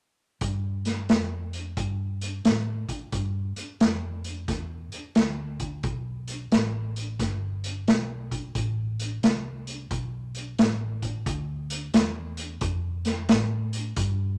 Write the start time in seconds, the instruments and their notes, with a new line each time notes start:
0.41 fingered electric bass G2, kick, closed hi-hat
0.85 snare, closed hi-hat
1.09 snare, closed hi-hat
1.53 closed hi-hat
1.77 fingered electric bass G2, kick, closed hi-hat
2.21 closed hi-hat
2.44 fingered electric bass A2, snare, closed hi-hat
2.89 kick, closed hi-hat
3.12 fingered electric bass G2, kick, closed hi-hat
3.56 muted fingered electric bass stroke, closed hi-hat
3.80 fingered electric bass F2, snare, closed hi-hat
4.24 closed hi-hat
4.48 fingered electric bass E2, kick, snare, closed hi-hat
4.92 muted fingered electric bass stroke, closed hi-hat
5.15 fingered electric bass D2, snare, closed hi-hat
5.60 kick, closed hi-hat
5.83 fingered electric bass B1, kick, closed hi-hat
6.28 closed hi-hat
6.51 fingered electric bass A1, snare, closed hi-hat
6.96 closed hi-hat
7.19 fingered electric bass G1, kick, snare, closed hi-hat
7.64 closed hi-hat
7.87 fingered electric bass B1, snare, closed hi-hat
8.31 kick, closed hi-hat
8.55 fingered electric bass A1, kick, closed hi-hat
8.99 closed hi-hat
9.23 fingered electric bass C2, snare, closed hi-hat
9.67 closed hi-hat
9.90 fingered electric bass B1, kick, closed hi-hat
10.35 closed hi-hat
10.58 fingered electric bass A1, snare, closed hi-hat
11.02 kick, closed hi-hat
11.26 fingered electric bass D2, kick, closed hi-hat
11.70 closed hi-hat
11.94 fingered electric bass E2, snare, closed hi-hat
12.37 closed hi-hat
12.61 fingered electric bass F2, kick, closed hi-hat
13.05 snare, closed hi-hat
13.29 fingered electric bass A2, kick, snare, closed hi-hat
13.73 closed hi-hat
13.96 fingered electric bass G2, kick, closed hi-hat